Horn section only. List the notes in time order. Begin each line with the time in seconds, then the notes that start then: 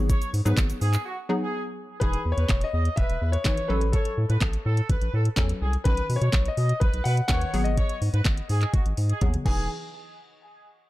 0.10 C#5
0.46 B4
0.82 G#4
1.06 F#4
1.42 G#4
2.01 G#4
2.37 B4
2.74 D#5
2.98 B4
3.22 B4
3.46 C#5
3.94 C#5
4.30 B4
4.66 A4
4.90 B4
5.14 A4
5.62 G#4
5.86 B4
6.22 C#5
6.58 D#5
6.82 B4
7.05 B4
7.29 C#5
7.78 C#5
8.14 B4
8.50 G#4
8.73 F#4
9.09 G#4
9.45 G#4